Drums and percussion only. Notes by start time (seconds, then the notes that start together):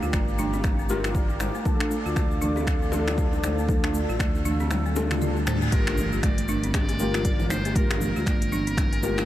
0.03 low bongo, shaker
0.13 finger snap, kick, high conga, shaker
0.28 shaker
0.38 high conga, low conga, shaker
0.53 high bongo, shaker
0.64 finger snap, kick, low bongo, high conga, shaker
0.79 shaker
0.89 high bongo, low bongo, high conga, shaker
1.04 finger snap, low bongo, shaker
1.15 kick, shaker
1.30 shaker
1.40 finger snap, low bongo, shaker
1.55 shaker
1.65 kick, high conga, low conga, shaker
1.80 finger snap, shaker
1.91 high conga, shaker
2.06 shaker
2.16 finger snap, kick, high conga, shaker
2.31 shaker
2.42 high conga, low conga, shaker
2.56 high bongo, shaker
2.67 finger snap, kick, shaker
2.82 shaker
2.92 high bongo, high conga, low conga, shaker
3.08 finger snap, low bongo, shaker
3.18 kick, high bongo, shaker
3.33 low bongo, shaker
3.44 finger snap, low bongo, high conga, shaker
3.59 shaker
3.68 kick, high conga, low conga, shaker
3.84 finger snap, shaker
3.93 high conga, shaker
4.09 low bongo, shaker
4.19 finger snap, kick, high conga, shaker
4.35 shaker
4.45 high conga, low conga, shaker
4.60 high bongo, shaker
4.71 finger snap, high tom, low bongo, high conga, shaker
4.86 high tom, shaker
4.96 high bongo, low bongo, high conga, shaker
5.11 finger snap, mid tom, low bongo, shaker
5.22 mid tom, shaker
5.37 shaker
5.47 finger snap, mid tom, low bongo, shaker
5.62 mid tom, shaker
5.72 kick, closed hi-hat, high conga, shaker
5.87 finger snap, closed hi-hat, high bongo, shaker
5.97 high conga, low conga, shaker
6.13 shaker
6.23 finger snap, kick, closed hi-hat, high conga, shaker
6.38 closed hi-hat, shaker
6.48 high conga, shaker
6.64 closed hi-hat, shaker
6.74 finger snap, kick, closed hi-hat, high bongo, shaker
6.88 closed hi-hat, high bongo, shaker
6.99 high conga, low conga, shaker
7.14 finger snap, low bongo, shaker
7.25 kick, closed hi-hat, shaker
7.40 low bongo, low conga, shaker
7.50 finger snap, low bongo, high conga, shaker
7.65 closed hi-hat, high bongo, shaker
7.76 kick, closed hi-hat, high conga, shaker
7.90 finger snap, closed hi-hat, high bongo, shaker
8.00 high conga, low conga, shaker
8.16 low bongo, shaker
8.26 finger snap, kick, closed hi-hat, high conga, shaker
8.42 closed hi-hat, shaker
8.52 high conga, low conga, shaker
8.67 closed hi-hat, shaker
8.77 finger snap, kick, closed hi-hat, low bongo, high conga, shaker
8.93 closed hi-hat, shaker
9.03 low bongo, high conga, shaker
9.18 finger snap, low bongo, shaker